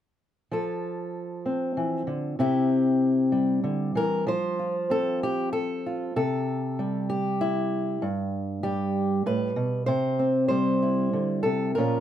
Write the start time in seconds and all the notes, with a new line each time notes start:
0.51 F3 A4
1.46 C4
1.77 E3
2.07 D3
2.39 C3 C4 E4 G4
3.32 G3
3.64 D3
3.95 E3 A#4
4.27 F3 C5
4.59 F4
4.90 C4 A4
5.23 G4
5.53 A4
5.86 F4
6.16 C3 A4
6.79 G3
7.10 G4
7.41 E4
8.02 G2
8.63 G3 G4
9.26 A2 B4
9.56 B2
9.86 C3 C5
10.19 C4
10.48 G3 C5
10.82 E4
11.13 D3
11.43 C3 A4
11.75 A#2 F3 C#4 A#4
11.79 F4